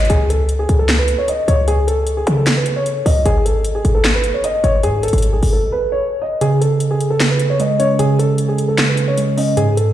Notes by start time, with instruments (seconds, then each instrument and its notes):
0.05 closed hi-hat
0.10 808-style bass C#2, grand piano G#4, closed hi-hat
0.30 grand piano A4, closed hi-hat
0.49 closed hi-hat
0.59 grand piano G#4
0.69 808-style bass C#2, closed hi-hat
0.79 grand piano A4
0.89 snare, clap, closed hi-hat
0.99 grand piano B4
1.08 closed hi-hat
1.18 grand piano C#5
1.28 grand piano D#5, closed hi-hat
1.48 808-style bass C#2, grand piano C#5, closed hi-hat
1.68 grand piano G#4, closed hi-hat
1.87 grand piano A4, closed hi-hat
2.07 closed hi-hat
2.17 grand piano G#4
2.27 808-style bass C#3, closed hi-hat
2.37 grand piano A4
2.46 snare, clap, closed hi-hat
2.57 grand piano B4
2.66 closed hi-hat
2.76 grand piano C#5
2.86 closed hi-hat
3.06 808-style bass C#2, grand piano D#5, open hi-hat
3.26 808-style bass G#1, grand piano G#4, closed hi-hat
3.45 grand piano A4, closed hi-hat
3.65 closed hi-hat
3.75 grand piano G#4
3.85 808-style bass G#1, closed hi-hat
3.95 grand piano A4
4.04 snare, clap, closed hi-hat
4.14 grand piano B4
4.24 closed hi-hat
4.34 grand piano C#5
4.44 grand piano D#5, closed hi-hat
4.64 808-style bass G#1, grand piano C#5, closed hi-hat
4.83 808-style bass G#2, grand piano G#4, closed hi-hat
5.03 grand piano A4, closed hi-hat
5.08 closed hi-hat
5.13 808-style bass G#1, closed hi-hat
5.18 closed hi-hat
5.22 closed hi-hat
5.33 grand piano G#4
5.43 808-style bass G#1, open hi-hat
5.53 grand piano A4
5.72 grand piano B4
5.92 grand piano C#5
6.22 grand piano D#5
6.41 synth keys C#3, grand piano G#4, closed hi-hat
6.61 grand piano A4, closed hi-hat
6.80 closed hi-hat
6.91 grand piano G#4
7.00 closed hi-hat
7.10 grand piano A4
7.20 synth keys C#3, snare, clap, closed hi-hat
7.30 grand piano B4
7.39 closed hi-hat
7.50 grand piano C#5
7.60 synth keys G#3, grand piano D#5, closed hi-hat
7.79 synth keys C#4, grand piano C#5, closed hi-hat
7.99 synth keys C#3, grand piano G#4, closed hi-hat
8.19 grand piano A4, closed hi-hat
8.38 closed hi-hat
8.49 grand piano G#4
8.58 closed hi-hat
8.68 grand piano A4
8.78 synth keys C#3, snare, clap, closed hi-hat
8.88 grand piano B4
8.97 closed hi-hat
9.08 grand piano C#5
9.18 synth keys G#3, closed hi-hat
9.37 synth keys C#4, grand piano D#5, open hi-hat
9.57 synth keys G#2, grand piano G#4, closed hi-hat
9.77 grand piano A4, closed hi-hat